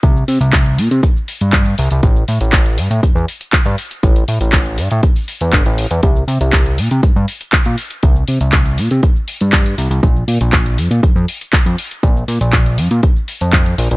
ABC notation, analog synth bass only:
X:1
M:4/4
L:1/16
Q:1/4=120
K:Cmix
V:1 name="Analog synth bass" clef=bass
C,,2 C, C,,3 B,, C, z3 G,,3 C,, C,, | A,,,2 A,, A,,,3 G,, A,, E,, E,, z3 G,, z2 | A,,,2 A,, A,,,3 G,, A,, z3 E,, G,,, A,,,2 E,, | C,,2 C, C,,3 B,, C, G,, G,, z3 B,, z2 |
C,,2 C, C,,3 B,, C, z3 G,,3 C,, C,, | B,,,2 B,, B,,,3 F,, B,, F,, F,, z3 F,, z2 | B,,,2 B,, B,,,3 F,, B,, z3 F,,3 B,,, B,,, |]